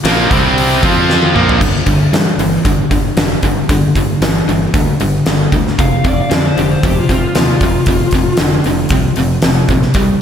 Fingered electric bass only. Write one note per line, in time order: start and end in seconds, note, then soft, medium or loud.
0.05 0.29 A#1 loud
0.31 0.79 C2 loud
0.83 1.31 F2 medium
1.35 1.59 A#1 medium
1.61 1.79 G1 medium
1.87 2.05 G1 medium
2.12 2.31 G2 medium
2.38 2.57 G1 medium
2.65 2.83 G1 medium
2.90 3.09 G1 medium
3.17 3.35 F1 medium
3.43 3.62 G1 medium
3.69 3.88 G1 medium
3.96 4.14 G1 medium
4.21 4.40 G1 medium
4.47 4.66 G1 medium
4.74 4.93 D2 loud
5.00 5.19 G1 medium
5.27 5.45 G1 medium
5.52 5.71 D2 loud
5.79 5.97 F1 medium
6.05 6.23 F1 medium
6.31 6.49 F2 loud
6.57 6.75 F1 medium
6.83 7.01 F1 loud
7.09 7.27 F1 medium
7.36 7.54 D#2 medium
7.61 7.79 F1 medium
7.87 8.05 F1 medium
8.13 8.31 F1 medium
8.40 8.58 F1 medium
8.66 8.84 F1 medium
8.90 9.09 C2 medium
9.18 9.36 F1 medium
9.44 9.62 F1 medium
9.69 9.87 A#1 medium
9.95 10.13 C2 medium